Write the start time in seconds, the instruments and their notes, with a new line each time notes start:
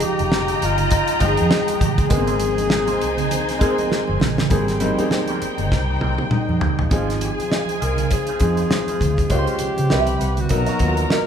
Already playing: string section D#3 G#3 F4 G5, grand piano F3 G#3 D#4 G5, violin section D#5 G5 A#5
0.00 alto saxophone G4, closed hi-hat, high conga
0.18 fingered electric bass F1, muted clean electric guitar stroke, closed hi-hat, high conga
0.31 muted clean electric guitar stroke, snare, muted conga
0.48 clean electric guitar G#3 D#4 G4, closed hi-hat, high conga
0.62 fingered electric bass G1, alto saxophone F4, muted clean electric guitar stroke, closed hi-hat
0.78 muted clean electric guitar stroke, closed hi-hat, low conga
0.90 muted clean electric guitar stroke, kick, closed hi-hat, muted conga
1.08 closed hi-hat, muted conga
1.19 fingered electric bass G1, grand piano F3 G#3 D#4 G5, clean electric guitar G#3 D#4 G4, kick, closed hi-hat
1.25 alto saxophone G#4
1.37 fingered electric bass F2, muted clean electric guitar stroke, closed hi-hat, high conga
1.51 muted clean electric guitar stroke, snare
1.67 clean electric guitar G#3 D#4 G4, closed hi-hat, muted conga, high conga
1.81 fingered electric bass A1, alto saxophone G#4, muted clean electric guitar stroke, kick, closed hi-hat, low conga
1.98 muted clean electric guitar stroke, kick, closed hi-hat, low conga
2.09 fingered electric bass G#1, string section C3 A#3 G#4, grand piano G#3 A#3 B3 G#4, violin section D#4 C5 G#5, muted clean electric guitar stroke, kick, closed hi-hat, muted conga
2.17 grand piano C4
2.27 clean electric guitar A#3 C4 G#4, closed hi-hat, muted conga
2.39 muted clean electric guitar stroke, closed hi-hat, high conga
2.57 muted clean electric guitar stroke, closed hi-hat, high conga
2.69 muted clean electric guitar stroke, snare
2.87 clean electric guitar A#3 C4 G#4, closed hi-hat, muted conga, high conga
2.99 fingered electric bass C2, muted clean electric guitar stroke, closed hi-hat
3.18 muted clean electric guitar stroke, closed hi-hat, low conga
3.30 muted clean electric guitar stroke, closed hi-hat, muted conga, high conga
3.49 snare, closed hi-hat
3.59 grand piano G#3 A#3 C4 G#4, clean electric guitar A#3 C4, kick, closed hi-hat
3.63 clean electric guitar G#4
3.78 muted clean electric guitar stroke, closed hi-hat, high conga
3.90 clean electric guitar A#3 C4 G4, snare, muted conga
4.08 fingered electric bass G1, high conga
4.20 fingered electric bass A#1, muted clean electric guitar stroke, snare, low conga
4.37 fingered electric bass A1, muted clean electric guitar stroke, snare, low conga
4.50 fingered electric bass G#1, grand piano G3 A#3 C4 G#4, clean electric guitar A#3 C4, violin section D#4 C5 G5, kick, closed hi-hat
4.54 clean electric guitar G4
4.68 snare, closed hi-hat, muted conga
4.80 grand piano G3 A#3 C4 D#4, muted clean electric guitar stroke, closed hi-hat, high conga
4.98 grand piano A#3 C4 G4 G#4, clean electric guitar A#3 C4 G4, muted fingered electric bass stroke, closed hi-hat, high conga
5.10 muted clean electric guitar stroke, snare, muted conga
5.26 clean electric guitar G4, closed hi-hat, high conga
5.30 clean electric guitar A#3 C4
5.42 muted fingered electric bass stroke, muted clean electric guitar stroke, closed hi-hat
5.58 fingered electric bass G1, muted clean electric guitar stroke, closed hi-hat, low conga
5.71 fingered electric bass C2, muted clean electric guitar stroke, kick, snare, muted conga
5.90 muted clean electric guitar stroke
6.01 fingered electric bass C2, clean electric guitar A#3 C4 G4, high tom
6.18 clean electric guitar A#3 C4 G4, high tom, high conga
6.31 alto saxophone D#4, muted clean electric guitar stroke, muted fingered electric bass stroke, mid tom
6.49 fingered electric bass F2, muted clean electric guitar stroke, muted conga, high conga
6.61 clean electric guitar A#3 C4 G4, floor tom, low conga
6.78 fingered electric bass A1, clean electric guitar A#3 C4 G4, floor tom
6.90 fingered electric bass G#1, grand piano F3 C4 D#4 G#4, string section G#3 D#4 F4 C5, clean electric guitar D#4 F4 C5, alto saxophone F4, violin section G#4 G#5, kick, closed hi-hat, muted conga
7.10 snare, closed hi-hat
7.21 alto saxophone G#4, closed hi-hat, high conga
7.39 muted clean electric guitar stroke, muted fingered electric bass stroke, closed hi-hat, high conga
7.50 clean electric guitar D#4 F4 D#5, snare, muted conga
7.65 muted clean electric guitar stroke, closed hi-hat, muted conga, high conga
7.80 fingered electric bass C2, clean electric guitar D#4 F4 C5, alto saxophone A#4, closed hi-hat
7.97 muted clean electric guitar stroke, closed hi-hat, low conga
8.10 alto saxophone G#4, muted clean electric guitar stroke, kick, closed hi-hat, muted conga
8.27 clean electric guitar D#4 F4 C5, closed hi-hat
8.40 fingered electric bass F2, grand piano F3 C4 D#4 G#4, muted clean electric guitar stroke, kick, closed hi-hat
8.57 muted clean electric guitar stroke, closed hi-hat, high conga
8.71 muted clean electric guitar stroke, snare
8.87 clean electric guitar D#4 F4 C5, closed hi-hat, muted conga, high conga
9.00 fingered electric bass D2, muted clean electric guitar stroke, kick, closed hi-hat, low conga
9.17 muted clean electric guitar stroke, kick, closed hi-hat, low conga
9.30 fingered electric bass C#2, string section C#3, grand piano G#3 C#4 F4 A#4, clean electric guitar C#4 F4 C5, alto saxophone G4, violin section C5 C6, kick, closed hi-hat, muted conga
9.39 grand piano C5
9.47 closed hi-hat, muted conga
9.59 muted fingered electric bass stroke, closed hi-hat, high conga
9.77 fingered electric bass C#3, muted clean electric guitar stroke, closed hi-hat, high conga
9.89 fingered electric bass C2, string section C3 G3 E4 B4, grand piano G3 C4 E4 B4, clean electric guitar G4 B4 E5, violin section B4 B5, snare, muted conga
10.06 muted clean electric guitar stroke, closed hi-hat, high conga
10.20 fingered electric bass C2, clean electric guitar G4 B4 F#5, closed hi-hat
10.37 alto saxophone F#4, muted clean electric guitar stroke, closed hi-hat, low conga
10.49 fingered electric bass B1, string section D#3 B3 F#4 A#4, grand piano F#3 B3 D#4 A#4, violin section A#4 A#5, muted clean electric guitar stroke, kick, closed hi-hat, muted conga
10.66 clean electric guitar F#4 A#4 D#5, snare, closed hi-hat, muted conga
10.79 fingered electric bass D#2, grand piano F#3 B3 D#4 F4, muted clean electric guitar stroke, kick, closed hi-hat
10.88 grand piano F#4
10.97 muted clean electric guitar stroke, closed hi-hat, high conga
11.10 clean electric guitar F#4 A#4 D#5, alto saxophone A#4, snare